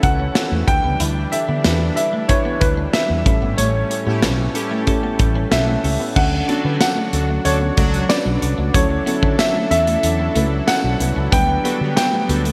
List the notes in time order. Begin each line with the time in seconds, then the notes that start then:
Already playing: D3 E3 C#4 E4 F#4 A4
0.03 C#2 C#4 E4 F#4 B4 F#5, muted clean electric guitar stroke, kick, closed hi-hat
0.20 C#4
0.35 C#4 E4 F#4 A4, snare, closed hi-hat
0.52 E2 A3
0.67 D2 D3 E3 G3 D4 E4 G4 B4 G5, muted clean electric guitar stroke, kick, closed hi-hat
0.84 C#2 B3
1.00 D2 E4, closed hi-hat
1.32 D4 E4 G4 A4 E5, muted clean electric guitar stroke, closed hi-hat
1.48 D3 B3
1.64 E2 D4 E4 G4 B4, snare, closed hi-hat
1.81 muted clean electric guitar stroke
1.96 D4 E4 G4 B4 E5, closed hi-hat
2.13 A3
2.28 D4 E4 G4 B4 C#5, kick, closed hi-hat
2.45 B3
2.61 D2 D4 E4 G4 B4, muted clean electric guitar stroke, kick, closed hi-hat
2.77 D4
2.93 D4 E4 G4 B4 E5, snare, closed hi-hat
3.10 E2 B3
3.25 A1 A2 A3 C#4 E4 G4 A4, muted clean electric guitar stroke, kick, closed hi-hat
3.42 G#1 B3
3.58 A1 A3 C#5, closed hi-hat
3.90 C#4 E4 G4 A4, muted clean electric guitar stroke, closed hi-hat
4.06 A2 B3 C#4 E4 G4
4.22 B1 C#4 E4 G4 B4, snare, closed hi-hat
4.39 muted clean electric guitar stroke
4.55 C#4 E4 G4 A4 B5, closed hi-hat
4.71 A3 A5
4.87 C#4 E4 G4 A4 G5, kick, closed hi-hat
5.03 B3 A5
5.19 A1 C#4 E4 G4 A4 G5, muted clean electric guitar stroke, kick, closed hi-hat
5.35 C#4
5.51 B1 C#4 E4 G4 A4 E5 F#5, snare, closed hi-hat
5.68 A3 E5
5.84 C#2 C#4 E4 G4 A4 E5, muted clean electric guitar stroke, open hi-hat
6.00 B3
6.16 D2 D3 F#3 C#4 D4 F#4 A4 F#5, kick, crash
6.32 muted clean electric guitar stroke
6.48 B3 C#4 D4 F#4 A4, closed hi-hat
6.64 D3 E4 G4 B4
6.80 C#4 D4 F#4 A4 F#5, snare, closed hi-hat, tambourine
6.97 A3
7.13 D2 C#4 D4 F#4 A4, muted clean electric guitar stroke, closed hi-hat
7.29 A3
7.45 D2 C#4 D4 F#4 A4 C#5, muted clean electric guitar stroke, closed hi-hat
7.61 B3
7.77 C#2 F#3 A3 C#4 D4 F#4 A4, kick, closed hi-hat
7.94 closed hi-hat
8.09 C#4 D4 F#4 B4 D5, snare, closed hi-hat, tambourine
8.26 B1 F#3
8.41 C2 C#4 D4 F#4 B4, muted clean electric guitar stroke, closed hi-hat
8.58 C#2 A3
8.74 D2 D3 F#3 C#4 E4 F#4 A4 C#5, kick, closed hi-hat
8.90 muted clean electric guitar stroke
9.06 B3 C#4 E4 F#4 A4, closed hi-hat
9.23 D3, kick
9.38 C#4 E4 F#4 A4 E5, snare, closed hi-hat, tambourine
9.55 A3
9.71 E2 C#4 E4 F#4 A4 E5, muted clean electric guitar stroke, closed hi-hat
9.87 A3, closed hi-hat
10.03 E2 C#4 E4 F#4 A4, muted clean electric guitar stroke, closed hi-hat
10.20 B3
10.35 C#2 A3 C#4 E4 F#4 B4, closed hi-hat
10.67 C#4 E4 F#4 A4 F#5, muted clean electric guitar stroke, snare, closed hi-hat, tambourine
10.84 B1
11.00 C2 B3 C#4 E4 F#4 B4, closed hi-hat
11.16 C#2 C#4
11.32 D2 D3 G3 B3 D4 G4 B4 G5, kick, closed hi-hat
11.48 muted clean electric guitar stroke
11.64 B3 D4 F#4 G4 A4 B4, closed hi-hat
11.81 D3 D4 G4 B4
11.96 B3 D4 G4 B4 G5, snare, closed hi-hat, tambourine
12.13 A3
12.29 D2 B3 D4 F#4 G4 A4 B4, muted clean electric guitar stroke, closed hi-hat
12.45 A3, closed hi-hat